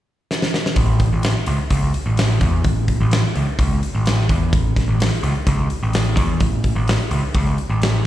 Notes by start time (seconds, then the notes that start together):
0.31 snare
0.42 snare
0.54 snare
0.66 snare
0.76 A1, kick, open hi-hat
1.00 kick, open hi-hat
1.13 A1
1.23 snare, open hi-hat
1.46 C#2, open hi-hat
1.70 C#2, kick, open hi-hat
1.94 open hi-hat
2.06 A1
2.17 snare, open hi-hat
2.41 E2, kick, open hi-hat
2.64 A1, kick, open hi-hat
2.88 kick, open hi-hat
3.01 A1
3.11 snare, open hi-hat
3.35 C#2, open hi-hat
3.59 C#2, kick, open hi-hat
3.83 open hi-hat
3.95 A1
4.06 snare, open hi-hat
4.20 snare
4.29 E2, kick, open hi-hat
4.52 A1, kick, open hi-hat
4.76 kick, snare, open hi-hat
4.88 A1
5.00 snare, open hi-hat
5.23 C#2, open hi-hat
5.47 C#2, kick, open hi-hat
5.70 open hi-hat
5.83 A1
5.93 snare, open hi-hat
6.17 E2, kick, open hi-hat
6.40 A1, kick, open hi-hat
6.64 kick, open hi-hat
6.75 A1
6.88 snare, open hi-hat
7.11 C#2, open hi-hat
7.34 C#2, kick, open hi-hat
7.58 open hi-hat
7.70 A1
7.82 snare, open hi-hat